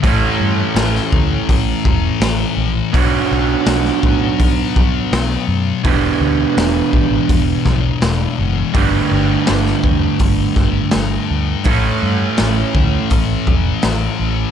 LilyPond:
<<
  \new Staff \with { instrumentName = "Clean electric guitar" } { \time 4/4 \key a \mixolydian \tempo 4 = 82 <a, e a cis' e' a'>1 | <b, fis b d' fis' cis''>1 | <e b d' g' b'>1 | <g a d' g' b'>1 |
<a, e a cis' e' a'>1 | }
  \new Staff \with { instrumentName = "Distorted electric guitar" } { \clef bass \time 4/4 \key a \mixolydian <a, e a>1 | <b, fis b>1 | <e, b, e>1 | <g, d g>1 |
<a, e a>1 | }
  \new Staff \with { instrumentName = "Fingered electric bass" } { \clef bass \time 4/4 \key a \mixolydian a,,8 g,8 a,,8 d,8 a,,8 e,,8 a,,8 bes,,8 | b,,8 b,,8 b,,8 a,8 b,,8 b,,8 b,,8 fis,8 | e,,8 d,8 e,,8 a,,8 e,,8 b,,8 e,,8 fis,,8 | g,,8 g,,8 g,,8 e,8 g,,8 g,,8 g,,8 d,8 |
a,,8 g,8 a,,8 d,8 a,,8 e,,8 a,,8 a,,8 | }
  \new DrumStaff \with { instrumentName = "Drums" } \drummode { \time 4/4 <hho bd>4 <hho sn>16 sn16 bd8 <hho bd>8 bd8 <hho sn>4 | <hho bd>4 <hho sn>16 sn16 bd8 <hho bd>8 bd8 <hho sn>4 | <hho bd>4 <hho sn>8 bd8 <hho bd>8 <bd sn>8 <hho sn>4 | <hho bd>4 <hho sn>16 sn16 bd8 <hho bd>8 <bd sn>8 <hho sn>4 |
<hho bd>4 <hho sn>8 bd8 <hho bd>8 bd8 <hho sn>4 | }
>>